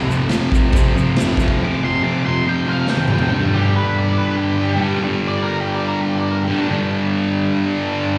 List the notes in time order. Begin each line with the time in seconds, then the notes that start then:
Already playing: F3
0.09 F2 C3 F3, shaker
0.29 F2 C3 F3, snare, crash, shaker
0.52 F2 C3 F3, kick, shaker
0.73 F2 C3 F3, kick, crash, shaker
0.96 F2 C3 F3, shaker
1.16 F2, snare, crash, shaker
1.20 C3 F3
1.37 F2, kick, shaker
1.42 C3 F3
1.48 kick
1.62 F2 C3 F3 D6
1.83 F2 C3 F3 C6
2.03 F2 C3 F3 D6
2.24 F2 C3 F3 C6
2.46 F2 C3 F3 G5
2.66 F2 C3 F3 F5
2.87 F2 C3 F3 G5, snare
2.97 high tom
3.08 F2 G5, mid tom
3.12 C3 F3
3.19 floor tom
3.29 G2 D3
3.33 G3
3.54 G4
3.76 B4
3.98 D5
4.18 B4
4.37 G4
4.76 D3 G3
4.81 G2
4.99 G2 D3
5.04 G3
5.28 D5
5.43 A#4
5.61 G4
5.75 D5
5.88 A#4
6.02 G4
6.17 D5
6.31 A#4
6.44 G3 G4
6.49 G2 D3
6.58 D4
6.68 G2 D3
6.73 G3